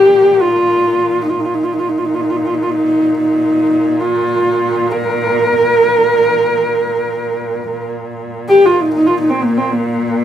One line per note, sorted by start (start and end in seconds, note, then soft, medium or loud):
0.00 1.38 A#2 medium
0.00 0.43 G4 medium
0.41 1.22 F4 medium
1.24 1.31 D#4 medium
1.30 1.41 F4 medium
1.38 7.70 A#2 medium
1.38 1.46 D#4 medium
1.45 1.56 F4 medium
1.54 1.65 D#4 medium
1.64 1.74 F4 medium
1.73 1.80 D#4 medium
1.79 1.90 F4 medium
1.89 1.99 D#4 medium
1.98 2.06 F4 medium
2.05 2.16 D#4 medium
2.14 2.22 F4 medium
2.21 2.31 D#4 medium
2.30 2.38 F4 medium
2.36 2.47 D#4 medium
2.46 2.56 F4 medium
2.54 2.64 D#4 medium
2.62 2.72 F4 medium
2.70 3.18 D#4 medium
3.18 4.01 D#4 medium
4.00 4.93 F4 medium
4.92 7.89 A#4 medium
7.70 10.24 A#2 medium
8.49 8.68 G4 medium
8.66 8.83 F4 medium
8.82 8.94 D#4 medium
8.94 9.08 D#4 medium
9.06 9.17 F4 medium
9.20 9.31 D#4 medium
9.30 9.45 C4 medium
9.44 9.59 A#3 medium
9.57 9.74 C4 medium
9.72 10.24 A#3 medium